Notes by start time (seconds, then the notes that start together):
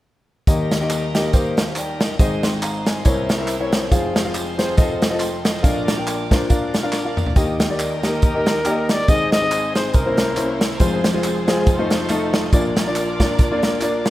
0.47 D#2 D#3 G3 A#3 D#4 G4 A#4 D#5, kick, closed hi-hat, tambourine
0.71 snare, closed hi-hat, tambourine
0.81 A#3 D#4 G4 D#5
0.90 clap, closed hi-hat, tambourine
1.15 A#3 D#4 G4 D#5, snare, closed hi-hat, tambourine
1.33 A#3 D#4 G4 C5, kick, closed hi-hat, tambourine
1.57 C5 F5, snare, closed hi-hat, tambourine
1.76 D5 G5, clap, closed hi-hat, tambourine
2.00 A#4 D#5, snare, closed hi-hat, tambourine
2.19 G#1 G#2 G#3 C4 D#4 G#4 C5 D#5, kick, closed hi-hat, tambourine
2.43 G5 C6, snare, closed hi-hat, tambourine
2.62 F5 A#5, clap, closed hi-hat, tambourine
2.86 D#5 G#5, snare, closed hi-hat, tambourine
3.05 C2 C3 A#3 C4 C#4 E4 A#4 C5 C#5, kick, closed hi-hat, tambourine
3.29 snare, closed hi-hat, tambourine
3.38 C4 E4 A#4 E5
3.48 E5, clap, closed hi-hat, tambourine
3.60 C4 E4 A#4 C#5
3.72 G5, snare, closed hi-hat, tambourine
3.91 F1 F2 G#3 C4 F4 G#4 C5 F5, kick, closed hi-hat, tambourine
4.16 snare, closed hi-hat, tambourine
4.25 C4 F4 G#4 F5
4.34 clap, closed hi-hat, tambourine
4.58 C4 F4 G#4 C5, snare, closed hi-hat, tambourine
4.77 F1 F2 A3 C4 D#4 F4 A4 A#4 D#5, kick, closed hi-hat, tambourine
4.84 C5
5.02 snare, closed hi-hat, tambourine
5.10 C4 F4 A4 D#5
5.20 G5 C6, clap, closed hi-hat, tambourine
5.44 A4 D#5, snare, closed hi-hat, tambourine
5.63 A#1 A#2 A#3 D4 F4 A#4 C#5 F5, kick, closed hi-hat, tambourine
5.70 D5
5.88 snare, closed hi-hat, tambourine
5.97 D4 F4 A#4 G5
6.07 clap, closed hi-hat, tambourine
6.31 D4 F4 A#4 C5, kick, snare, closed hi-hat, tambourine
6.49 D4 F4 A#4 F5, kick, closed hi-hat, tambourine
6.74 snare, closed hi-hat, tambourine
6.83 D4 F4 A#4 F5
6.92 snare, clap, tambourine
7.05 D4 F4 A#4 F5
7.17 mid tom, tambourine
7.26 floor tom
7.36 D#2 D#3 A#3 D#4 F4 G4 A#4 D#5, kick, closed hi-hat, tambourine
7.42 G4
7.60 snare, closed hi-hat, tambourine
7.69 A#3 D#4 G4 D5
7.79 clap, closed hi-hat, tambourine
8.03 A#3 D#4 G4 A#4 D#5, snare, closed hi-hat, tambourine
8.22 kick, closed hi-hat, tambourine
8.35 A#3 D#4 G4 D#5
8.46 snare, closed hi-hat, tambourine
8.65 A#3 D#4 G4 D5, clap, closed hi-hat, tambourine
8.71 D#5
8.89 D5, snare, closed hi-hat, tambourine
9.08 G#1 G#2 C4 D#4 G#4 C5 D#5, kick, closed hi-hat, tambourine
9.32 D#5, snare, closed hi-hat, tambourine
9.42 C4 D#4 G#4 D#5
9.51 clap, closed hi-hat, tambourine
9.75 C4 D#4 G#4 C5, snare, closed hi-hat, tambourine
9.94 C2 C3 A#3 C#4 D#4 E4 A#4 C5, kick, closed hi-hat, tambourine
10.00 E4
10.06 A#3 C#4 E4 C5
10.17 snare, closed hi-hat, tambourine
10.37 A#3 C#4 E4 C5, clap, closed hi-hat, tambourine
10.61 snare, closed hi-hat, tambourine
10.80 F1 F2 G#3 C4 F4 G#4 B4 C5, kick, closed hi-hat, tambourine
10.85 C5
11.04 snare, closed hi-hat, tambourine
11.14 G#3 C4 F4 G#4
11.23 clap, closed hi-hat, tambourine
11.47 G#3 C4 F4 G#4, snare, closed hi-hat, tambourine
11.66 F1 F2 G#3 D#4 F4 A4 C5, kick, closed hi-hat, tambourine
11.72 A3
11.79 A3 D#4 F4 C5
11.90 snare, closed hi-hat, tambourine
12.09 A3 D#4 F4 A4, clap, closed hi-hat, tambourine
12.33 snare, closed hi-hat, tambourine
12.53 A#1 A#2 A#3 D4 F4 A#4 D5, kick, closed hi-hat, tambourine
12.76 snare, closed hi-hat, tambourine
12.87 A#3 D4 F4 D5
12.96 clap, closed hi-hat, tambourine
13.20 A#3 D4 F4 D5, kick, snare, closed hi-hat, tambourine
13.38 kick, closed hi-hat, tambourine
13.51 A#3 D4 F4 D5
13.63 snare, closed hi-hat, tambourine
13.81 A#3 D4 F4 D5, clap, closed hi-hat, tambourine
14.06 snare, closed hi-hat, tambourine